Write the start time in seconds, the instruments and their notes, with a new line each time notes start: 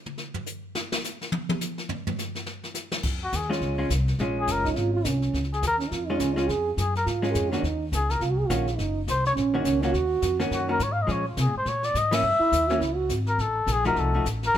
0.06 mid tom
0.18 snare
0.34 floor tom
0.46 hi-hat pedal
0.75 snare
0.92 snare
1.04 snare, hi-hat pedal
1.21 snare
1.32 high tom
1.49 high tom
1.61 snare, hi-hat pedal
1.78 snare
1.89 floor tom
2.07 floor tom
2.18 snare, hi-hat pedal
2.35 snare
2.46 snare
2.63 snare
2.74 snare, hi-hat pedal
2.92 snare
3.03 upright bass F2, brush sweep, kick, snare, crash
3.23 muted trumpet F#4
3.32 upright bass D#2, muted trumpet G#4, kick, snare, hi-hat pedal
3.42 snare
3.50 hollow-body jazz guitar G#3 C#4 F4, snare
3.61 upright bass C#2, brush sweep, kick, snare
3.78 hollow-body jazz guitar G#3 C#4 F4
3.90 upright bass C2, snare, hi-hat pedal
4.08 snare
4.19 upright bass A#1, hollow-body jazz guitar G#3 C#4 F4, brush sweep, kick, snare
4.40 muted trumpet G#4
4.47 upright bass F#1, kick, snare, hi-hat pedal
4.52 muted trumpet A#4
4.64 trombone D#4, kick, snare
4.76 upright bass G#1, trombone F4, brush sweep, snare
4.94 trombone F4
5.05 upright bass C2, trombone C#4, kick, snare, hi-hat pedal
5.22 snare
5.33 upright bass C#2, brush sweep, kick, snare
5.43 snare
5.53 muted trumpet G#4, snare
5.62 upright bass D#2, kick, snare, hi-hat pedal
5.67 muted trumpet A#4
5.79 trombone C#4, snare
5.90 upright bass F2, trombone F4, brush sweep, kick, snare
6.07 hollow-body jazz guitar G#3 C#4 F4, trombone D#4
6.19 upright bass C#2, trombone C#4, kick, snare, hi-hat pedal
6.36 hollow-body jazz guitar G#3 C#4 F4, trombone F4, snare
6.48 upright bass F2, trombone G#4, brush sweep, kick, snare
6.77 upright bass F#2, muted trumpet G#4, kick, snare, hi-hat pedal
6.95 muted trumpet A#4, snare
7.05 upright bass G#2, trombone F4, brush sweep, kick, snare
7.22 hollow-body jazz guitar G#3 C#4 F4, snare
7.31 trombone G#4 A#4
7.35 upright bass F2, kick, snare, hi-hat pedal
7.51 hollow-body jazz guitar D#3 A#3 C#4 F#4, trombone C#4, snare
7.58 trombone D4
7.63 upright bass D#2, trombone D#4, brush sweep, kick, snare
7.92 upright bass C#2, muted trumpet G#4, kick, snare, hi-hat pedal
8.10 muted trumpet A#4, snare
8.20 upright bass C2, trombone F4, brush sweep, kick, snare
8.30 trombone F#4
8.39 trombone G#4
8.48 upright bass A#1, hollow-body jazz guitar D#3 A#3 C#4 F#4, trombone F4, kick, snare, hi-hat pedal
8.67 snare
8.78 upright bass F#1, trombone D#4, brush sweep, kick, snare
9.07 upright bass C2, muted trumpet C5, kick, snare, hi-hat pedal
9.25 muted trumpet C#5, snare
9.35 upright bass A#1, trombone C#4, brush sweep, kick, snare
9.54 hollow-body jazz guitar D#3 A#3 C#4 F#4
9.58 trombone D#4
9.64 upright bass C#2, trombone C#4, kick, snare, hi-hat pedal
9.82 hollow-body jazz guitar D#3 A#3 C#4 F#4, trombone F4, snare
9.94 upright bass D#2, trombone F#4, brush sweep, kick, snare
10.22 upright bass F2, kick, snare, hi-hat pedal
10.40 hollow-body jazz guitar D#3 A#3 C#4 F#4, snare
10.51 upright bass F#2, muted trumpet F#4, brush sweep, kick, snare
10.68 hollow-body jazz guitar D#3 A#3 C#4 F#4, muted trumpet A#4
10.79 upright bass G#2, muted trumpet C#5, kick, snare, hi-hat pedal
10.92 muted trumpet F5
11.02 muted trumpet D#5
11.07 upright bass A#2, hollow-body jazz guitar F3 G#3 C#4, brush sweep, kick, snare
11.11 muted trumpet C#5
11.28 muted trumpet F4
11.37 upright bass C3, muted trumpet G#4, kick, snare, hi-hat pedal
11.46 upright bass A#2
11.55 upright bass G#2, muted trumpet C5
11.65 upright bass A#2, muted trumpet C#5, brush sweep, kick, snare
11.83 muted trumpet D5, snare
11.94 upright bass G#2, muted trumpet D#5, kick, snare, hi-hat pedal
12.11 hollow-body jazz guitar E3 A#3 C#4, muted trumpet E5, snare, ride
12.22 upright bass F#2, brush sweep
12.39 trombone E4, muted upright bass stroke
12.52 upright bass D#2, kick, snare, hi-hat pedal
12.68 hollow-body jazz guitar E3 A#3 C#4, trombone F#4, snare
12.79 upright bass C#2, trombone E4, brush sweep, kick, snare
12.96 trombone F#4
13.09 upright bass G#1, kick, snare, hi-hat pedal
13.26 muted trumpet A#4, snare
13.38 upright bass A1, muted trumpet A4, brush sweep, kick, snare
13.67 upright bass A#1, kick, snare, hi-hat pedal
13.72 muted trumpet G#4
13.84 hollow-body jazz guitar F3 A3 D#4 F#4, muted trumpet A#4, snare
13.96 upright bass C2, muted trumpet A4, brush sweep, kick, snare
14.14 hollow-body jazz guitar F3 A3 D#4 F#4
14.25 upright bass A1, kick, snare, hi-hat pedal
14.43 muted trumpet A#4, snare
14.54 upright bass A#1, brush sweep, kick, snare